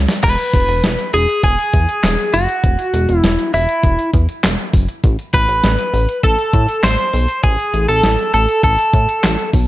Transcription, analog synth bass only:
0.24 0.37 E1 loud
0.54 0.67 E1 loud
0.68 0.82 E1 loud
0.84 0.97 E1 loud
1.14 1.27 E1 loud
1.44 1.57 E1 loud
1.73 1.87 E2 loud
2.04 2.17 E1 loud
2.34 2.47 F#1 medium
2.64 2.77 E1 loud
2.94 3.07 E1 loud
3.09 3.22 E1 medium
3.24 3.37 E1 loud
3.54 3.67 E1 loud
3.84 3.97 E1 loud
4.14 4.27 E2 loud
4.44 4.57 E1 loud
4.74 4.87 F#1 medium
5.04 5.17 A1 loud
5.34 5.47 A1 loud
5.49 5.62 A1 loud
5.64 5.77 A1 loud
5.94 6.07 A1 loud
6.23 6.37 A1 loud
6.53 6.67 A2 loud
6.84 6.97 A1 loud
7.14 7.27 B1 medium
7.44 7.57 A1 loud
7.74 7.87 A1 loud
7.89 8.02 A1 loud
8.04 8.17 A1 loud
8.34 8.47 A1 loud
8.63 8.77 A1 medium
8.94 9.07 A2 loud
9.24 9.37 A1 loud
9.54 9.67 B1 medium

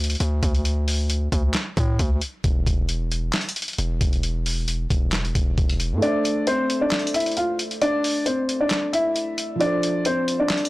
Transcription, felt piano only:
5.97 9.54 A3 medium
5.97 9.56 A4 medium
6.04 9.57 C5 medium
6.04 9.59 E5 medium
9.56 10.69 F3 medium
9.56 10.69 F4 medium
9.62 10.69 A4 medium
9.62 10.69 C5 medium

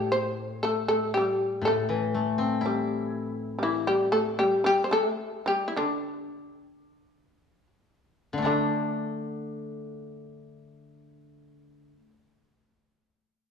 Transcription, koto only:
0.00 1.60 A2 soft
1.61 4.63 A2 soft
1.89 3.88 E3 soft
2.14 4.14 A3 soft
2.38 4.38 C4 soft
2.61 4.63 E4 soft
8.33 11.91 D3 soft
8.38 11.95 A3 soft
8.42 12.00 D4 soft

